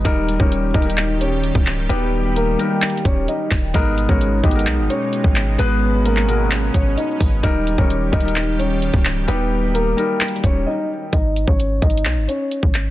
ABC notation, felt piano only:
X:1
M:4/4
L:1/16
Q:1/4=130
K:G#m
V:1 name="Felt piano"
[=G,DA]2 z [G,DA]2 z [G,DA] [G,DA]6 z3 | [=G,D=G]4 z2 [G,DA]6 z4 | [G,B,A]2 z [G,B,A]2 z [G,B,=G] [^G,B,A]6 z3 | [G,B,B]4 z2 [B,,G,A]6 z4 |
[=G,DA]2 z [G,DA]2 z [G,DA] [G,DA]6 z3 | [=G,D=G]4 z2 [G,DA]6 z4 | z16 |]